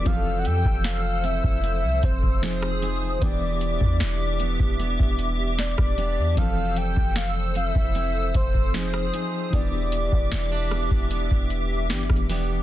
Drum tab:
HH |x-----x-----x-----x-----x-----x-----x-----x-----|x-----x-----x-----x-----x-----x-----x-----x-----|x-----x-----x-----x-----x-----x-----x-----x-----|x-----x-----x-----x-----x-----x-----x-x-x-o-----|
SD |------------o-----------------------o--r--------|------------o-----------------------o--r--------|------------o-----------------------o--r--------|------------o-----r-----------------o--r--------|
BD |o--------o-----------o--------o--o--------------|o--------o-----------o-----o-----------o--------|o--------o-----------o--------o--o--------------|o--------o-----------o-----o-----------o--------|